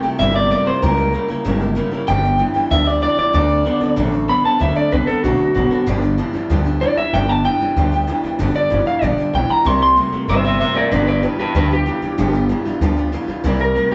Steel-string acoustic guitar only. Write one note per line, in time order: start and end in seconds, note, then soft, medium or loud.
0.03 0.18 A#3 medium
0.03 0.19 E4 medium
0.03 0.19 G4 medium
0.19 0.35 C3 medium
0.19 0.35 G3 medium
0.19 0.35 A#3 medium
0.19 0.34 E4 medium
0.19 0.33 G4 medium
0.34 0.50 A#3 soft
0.34 0.51 E4 soft
0.34 0.50 G4 medium
0.50 0.66 G3 medium
0.50 0.67 A#3 medium
0.50 0.66 E4 medium
0.50 0.64 G4 medium
0.65 0.82 A#3 soft
0.65 0.82 E4 medium
0.65 0.82 G4 medium
0.82 0.98 C#3 medium
0.82 0.98 G3 medium
0.82 0.99 A#3 medium
0.82 0.97 E4 medium
0.82 0.96 G4 loud
0.97 1.13 A#3 soft
0.97 1.13 E4 medium
0.97 1.13 G4 medium
1.13 1.29 G3 medium
1.13 1.30 A#3 medium
1.13 1.29 E4 medium
1.13 1.27 G4 medium
1.28 1.44 A#3 medium
1.28 1.45 E4 medium
1.28 1.45 G4 medium
1.45 1.61 C#3 medium
1.45 1.61 G3 medium
1.45 1.61 A#3 medium
1.45 1.60 E4 loud
1.45 1.58 G4 loud
1.59 1.75 A#3 soft
1.59 1.76 E4 medium
1.59 1.76 G4 medium
1.75 1.92 G3 medium
1.75 1.92 A#3 medium
1.75 1.92 E4 medium
1.75 1.90 G4 medium
1.91 2.08 A#3 medium
1.91 2.08 E4 medium
1.91 2.08 G4 medium
2.07 2.23 G2 medium
2.07 2.24 D3 medium
2.07 2.24 F3 medium
2.07 2.24 B3 medium
2.07 2.23 D4 loud
2.07 2.22 G4 medium
2.23 2.37 F3 soft
2.23 2.38 B3 medium
2.23 2.39 D4 medium
2.23 2.39 G4 medium
2.38 2.55 F3 medium
2.38 2.54 B3 medium
2.38 2.54 D4 medium
2.38 2.53 G4 medium
2.54 2.70 F3 soft
2.54 2.70 B3 medium
2.54 2.71 D4 medium
2.54 2.70 G4 medium
2.70 2.87 G2 medium
2.70 2.87 D3 medium
2.70 2.87 F3 medium
2.70 2.87 B3 medium
2.70 2.86 D4 medium
2.70 2.85 G4 medium
2.86 3.00 F3 soft
2.86 3.01 B3 soft
2.86 3.02 D4 soft
2.86 3.02 G4 medium
3.01 3.18 F3 medium
3.01 3.18 B3 medium
3.01 3.17 D4 medium
3.01 3.16 G4 medium
3.17 3.33 F3 soft
3.17 3.34 B3 soft
3.17 3.33 D4 soft
3.17 3.34 G4 medium
3.33 3.50 D3 medium
3.33 3.50 F#3 medium
3.33 3.50 C4 medium
3.33 3.48 D4 medium
3.33 3.47 A4 medium
3.48 3.65 C4 soft
3.48 3.66 D4 medium
3.48 3.65 A4 medium
3.65 3.81 F#3 medium
3.65 3.82 C4 medium
3.65 3.81 D4 medium
3.65 3.79 A4 medium
3.81 3.96 C4 medium
3.81 3.96 D4 medium
3.81 3.97 A4 medium
3.96 4.13 D3 medium
3.96 4.13 F#3 medium
3.96 4.13 C4 medium
3.96 4.12 D4 medium
3.96 4.11 A4 loud
4.12 4.28 C4 soft
4.12 4.29 D4 medium
4.12 4.28 A4 medium
4.28 4.44 F#3 medium
4.28 4.45 C4 medium
4.28 4.44 D4 medium
4.28 4.43 A4 medium
4.44 4.59 C4 soft
4.44 4.60 D4 soft
4.44 4.60 A4 medium
4.60 4.76 D3 medium
4.60 4.76 F#3 medium
4.60 4.76 C4 medium
4.60 4.76 D4 medium
4.60 4.75 A4 medium
4.76 4.91 C4 soft
4.76 4.92 D4 soft
4.76 4.92 A4 medium
4.91 5.07 F#3 medium
4.91 5.08 C4 medium
4.91 5.08 D4 medium
4.91 5.07 A4 medium
5.08 5.23 C4 soft
5.08 5.24 D4 medium
5.08 5.24 A4 medium
5.24 5.40 D3 medium
5.24 5.40 F#3 medium
5.24 5.40 C4 medium
5.24 5.39 D4 medium
5.24 5.37 A4 medium
5.39 5.55 C4 soft
5.39 5.55 D4 soft
5.39 5.55 A4 medium
5.55 5.71 F#3 medium
5.55 5.71 C4 medium
5.55 5.71 D4 medium
5.55 5.70 A4 medium
5.71 5.87 C4 medium
5.71 5.87 D4 medium
5.71 5.87 A4 medium
5.86 6.02 G2 loud
5.86 6.03 D3 loud
5.86 6.03 F3 medium
5.86 6.03 B3 loud
5.86 6.02 D4 loud
5.86 6.01 G4 loud
6.02 6.16 F3 medium
6.02 6.17 B3 medium
6.02 6.18 D4 medium
6.02 6.18 G4 medium
6.18 6.34 F3 medium
6.18 6.34 B3 medium
6.18 6.33 D4 medium
6.18 6.32 G4 medium
6.33 6.49 F3 medium
6.33 6.49 B3 medium
6.33 6.50 D4 medium
6.33 6.49 G4 medium
6.50 6.66 G2 medium
6.50 6.66 D3 medium
6.50 6.66 F3 medium
6.50 6.66 B3 medium
6.50 6.65 D4 medium
6.50 6.63 G4 medium
6.65 6.79 F3 soft
6.65 6.80 B3 medium
6.65 6.81 D4 medium
6.65 6.81 G4 medium
6.81 6.97 F3 medium
6.81 6.97 B3 medium
6.81 6.97 D4 medium
6.81 6.96 G4 medium
6.97 7.13 F3 soft
6.97 7.13 B3 medium
6.97 7.13 D4 medium
6.97 7.13 G4 medium
7.14 7.29 G2 medium
7.14 7.29 D3 medium
7.14 7.29 F3 medium
7.14 7.29 B3 medium
7.14 7.29 D4 medium
7.14 7.28 G4 medium
7.29 7.43 F3 soft
7.29 7.44 B3 medium
7.29 7.45 D4 medium
7.29 7.45 G4 medium
7.44 7.60 F3 medium
7.44 7.60 B3 medium
7.44 7.60 D4 medium
7.44 7.59 G4 medium
7.60 7.76 F3 soft
7.60 7.77 B3 soft
7.60 7.77 D4 medium
7.60 7.76 G4 medium
7.77 7.92 G2 medium
7.77 7.92 D3 medium
7.77 7.92 F3 medium
7.77 7.92 B3 medium
7.77 7.91 D4 medium
7.77 7.91 G4 medium
7.92 8.06 F3 soft
7.92 8.07 B3 soft
7.92 8.08 D4 medium
7.92 8.08 G4 medium
8.07 8.23 F3 medium
8.07 8.24 B3 medium
8.07 8.24 D4 medium
8.07 8.22 G4 medium
8.24 8.38 F3 soft
8.24 8.39 B3 medium
8.24 8.39 D4 medium
8.24 8.39 G4 medium
8.39 8.55 G2 medium
8.39 8.55 D3 medium
8.39 8.55 F3 medium
8.39 8.55 B3 medium
8.39 8.54 D4 loud
8.39 8.53 G4 loud
8.55 8.69 F3 soft
8.55 8.70 B3 medium
8.55 8.71 D4 medium
8.55 8.71 G4 medium
8.70 8.86 F3 medium
8.70 8.87 B3 medium
8.70 8.86 D4 medium
8.70 8.85 G4 medium
8.86 9.02 F3 soft
8.86 9.02 B3 medium
8.86 9.02 D4 medium
8.86 9.02 G4 medium
9.02 9.18 G2 medium
9.02 9.18 D3 medium
9.02 9.18 F3 medium
9.02 9.18 B3 medium
9.02 9.18 D4 medium
9.02 9.17 G4 medium
9.18 9.32 F3 soft
9.18 9.33 B3 soft
9.18 9.34 D4 medium
9.18 9.34 G4 medium
9.33 9.49 F3 medium
9.33 9.49 B3 medium
9.33 9.48 D4 medium
9.33 9.47 G4 medium
9.49 9.65 F3 soft
9.49 9.65 B3 soft
9.49 9.65 D4 soft
9.49 9.65 G4 medium
9.65 9.81 C3 medium
9.65 9.81 G3 medium
9.65 9.81 A#3 medium
9.65 9.81 E4 medium
9.65 9.79 G4 medium
9.80 9.97 E4 medium
9.80 9.97 G4 medium
9.96 10.12 G3 medium
9.96 10.13 A#3 medium
9.96 10.13 E4 medium
9.96 10.11 G4 medium
10.12 10.28 A#3 soft
10.12 10.28 E4 medium
10.12 10.28 G4 medium
10.28 10.44 C3 medium
10.28 10.45 G3 medium
10.28 10.45 A#3 medium
10.28 10.44 E4 medium
10.28 10.43 G4 medium
10.44 10.60 A#3 soft
10.44 10.61 E4 medium
10.44 10.60 G4 medium
10.60 10.76 G3 medium
10.60 10.77 A#3 medium
10.60 10.75 E4 medium
10.60 10.74 G4 medium
10.75 10.92 A#3 soft
10.75 10.92 E4 medium
10.75 10.91 G4 medium
10.91 11.07 G2 medium
10.91 11.07 D3 medium
10.91 11.08 F3 medium
10.91 11.08 B3 medium
10.91 11.07 F4 medium
10.91 11.06 G4 medium
11.07 11.21 F3 medium
11.07 11.22 B3 soft
11.07 11.23 F4 medium
11.07 11.23 G4 medium
11.22 11.39 F3 medium
11.22 11.39 B3 medium
11.22 11.38 F4 medium
11.22 11.37 G4 medium
11.38 11.54 F3 soft
11.38 11.55 B3 medium
11.38 11.55 F4 medium
11.38 11.54 G4 medium
11.55 11.70 G2 medium
11.55 11.71 D3 medium
11.55 11.71 F3 medium
11.55 11.71 B3 medium
11.55 11.70 F4 medium
11.55 11.69 G4 medium
11.71 11.85 F3 soft
11.71 11.86 B3 soft
11.71 11.86 F4 medium
11.71 11.86 G4 medium
11.86 12.02 F3 medium
11.86 12.02 B3 medium
11.86 12.02 F4 medium
11.86 12.01 G4 medium
12.02 12.17 F3 soft
12.02 12.18 B3 medium
12.02 12.18 F4 medium
12.02 12.18 G4 medium
12.18 12.34 G2 medium
12.18 12.34 D3 medium
12.18 12.34 F3 medium
12.18 12.34 B3 medium
12.18 12.33 F4 loud
12.18 12.32 G4 loud
12.33 12.48 F3 medium
12.33 12.49 B3 medium
12.33 12.50 F4 medium
12.33 12.49 G4 medium
12.49 12.65 F3 medium
12.49 12.66 B3 medium
12.49 12.65 F4 medium
12.49 12.64 G4 medium
12.65 12.81 F3 medium
12.65 12.81 B3 medium
12.65 12.82 F4 medium
12.65 12.81 G4 medium
12.81 12.97 G2 medium
12.81 12.97 D3 medium
12.81 12.97 F3 medium
12.81 12.97 B3 loud
12.81 12.97 F4 loud
12.81 12.95 G4 loud
12.97 13.11 F3 soft
12.97 13.12 B3 medium
12.97 13.13 F4 medium
12.97 13.12 G4 medium
13.12 13.28 F3 medium
13.12 13.29 B3 medium
13.12 13.28 F4 medium
13.12 13.27 G4 medium
13.28 13.44 F3 medium
13.28 13.44 B3 medium
13.28 13.44 F4 medium
13.28 13.44 G4 medium
13.44 13.60 C3 medium
13.44 13.60 G3 loud
13.44 13.60 A#3 loud
13.44 13.60 E4 medium
13.44 13.58 G4 loud
13.60 13.75 A#3 soft
13.60 13.76 E4 soft
13.60 13.75 G4 medium
13.75 13.91 G3 medium
13.75 13.92 A#3 medium
13.75 13.92 E4 medium
13.75 13.90 G4 medium
13.91 13.95 G4 medium